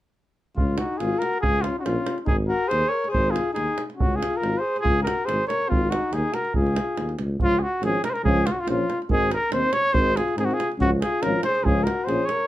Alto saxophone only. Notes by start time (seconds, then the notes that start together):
0.58 C#4
0.79 D#4
1.00 F4
1.24 F#4
1.42 F4
1.64 C#4
1.78 D#4
1.82 C#4
2.25 D#4
2.47 F#4
2.68 G#4
2.90 A#4
3.08 G#4
3.30 F4
3.53 D#4
3.95 C#4
4.18 F4
4.40 F4
4.61 G#4
4.82 F4
5.04 F#4
5.25 G#4
5.47 A#4
5.69 C4
5.90 D#4
6.11 D#4
6.33 F#4
6.55 F4
9.96 G#4
10.17 F4
10.37 D#4
10.44 D#4
10.52 F4
10.79 C#4
11.00 F4
11.24 F4
11.47 G#4
11.67 F4
11.86 F#4
12.09 G#4
12.31 A#4